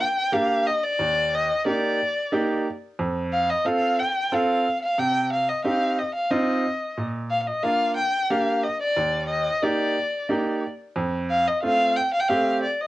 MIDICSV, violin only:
0, 0, Header, 1, 2, 480
1, 0, Start_track
1, 0, Key_signature, -2, "major"
1, 0, Tempo, 664452
1, 714, Time_signature, 3, 2, 24, 8
1, 9298, End_track
2, 0, Start_track
2, 0, Title_t, "Violin"
2, 0, Program_c, 0, 40
2, 0, Note_on_c, 0, 79, 93
2, 238, Note_on_c, 0, 77, 93
2, 249, Note_off_c, 0, 79, 0
2, 481, Note_on_c, 0, 75, 86
2, 492, Note_off_c, 0, 77, 0
2, 602, Note_on_c, 0, 74, 99
2, 613, Note_off_c, 0, 75, 0
2, 971, Note_on_c, 0, 75, 84
2, 982, Note_off_c, 0, 74, 0
2, 1203, Note_off_c, 0, 75, 0
2, 1209, Note_on_c, 0, 74, 82
2, 1893, Note_off_c, 0, 74, 0
2, 2405, Note_on_c, 0, 77, 89
2, 2528, Note_on_c, 0, 75, 85
2, 2539, Note_off_c, 0, 77, 0
2, 2644, Note_on_c, 0, 77, 98
2, 2655, Note_off_c, 0, 75, 0
2, 2885, Note_on_c, 0, 79, 90
2, 2896, Note_off_c, 0, 77, 0
2, 3132, Note_on_c, 0, 77, 85
2, 3143, Note_off_c, 0, 79, 0
2, 3483, Note_off_c, 0, 77, 0
2, 3486, Note_on_c, 0, 77, 88
2, 3606, Note_on_c, 0, 79, 96
2, 3617, Note_off_c, 0, 77, 0
2, 3840, Note_off_c, 0, 79, 0
2, 3851, Note_on_c, 0, 77, 80
2, 3965, Note_on_c, 0, 75, 67
2, 3976, Note_off_c, 0, 77, 0
2, 4079, Note_off_c, 0, 75, 0
2, 4084, Note_on_c, 0, 77, 84
2, 4324, Note_on_c, 0, 75, 74
2, 4335, Note_off_c, 0, 77, 0
2, 4439, Note_off_c, 0, 75, 0
2, 4442, Note_on_c, 0, 77, 81
2, 4558, Note_on_c, 0, 75, 67
2, 4568, Note_off_c, 0, 77, 0
2, 5035, Note_off_c, 0, 75, 0
2, 5276, Note_on_c, 0, 77, 81
2, 5356, Note_off_c, 0, 77, 0
2, 5360, Note_on_c, 0, 77, 65
2, 5397, Note_on_c, 0, 75, 77
2, 5408, Note_off_c, 0, 77, 0
2, 5510, Note_on_c, 0, 77, 96
2, 5520, Note_off_c, 0, 75, 0
2, 5751, Note_off_c, 0, 77, 0
2, 5758, Note_on_c, 0, 79, 88
2, 5999, Note_on_c, 0, 77, 81
2, 6009, Note_off_c, 0, 79, 0
2, 6237, Note_on_c, 0, 75, 76
2, 6248, Note_off_c, 0, 77, 0
2, 6354, Note_off_c, 0, 75, 0
2, 6357, Note_on_c, 0, 74, 87
2, 6690, Note_off_c, 0, 74, 0
2, 6713, Note_on_c, 0, 75, 83
2, 6954, Note_on_c, 0, 74, 83
2, 6965, Note_off_c, 0, 75, 0
2, 7673, Note_off_c, 0, 74, 0
2, 8167, Note_on_c, 0, 77, 96
2, 8289, Note_on_c, 0, 75, 83
2, 8300, Note_off_c, 0, 77, 0
2, 8401, Note_off_c, 0, 75, 0
2, 8404, Note_on_c, 0, 77, 110
2, 8640, Note_on_c, 0, 79, 90
2, 8651, Note_off_c, 0, 77, 0
2, 8756, Note_off_c, 0, 79, 0
2, 8765, Note_on_c, 0, 77, 99
2, 8811, Note_on_c, 0, 79, 77
2, 8822, Note_off_c, 0, 77, 0
2, 8874, Note_on_c, 0, 77, 91
2, 8885, Note_off_c, 0, 79, 0
2, 9123, Note_off_c, 0, 77, 0
2, 9127, Note_on_c, 0, 74, 72
2, 9253, Note_on_c, 0, 75, 85
2, 9264, Note_off_c, 0, 74, 0
2, 9298, Note_off_c, 0, 75, 0
2, 9298, End_track
0, 0, End_of_file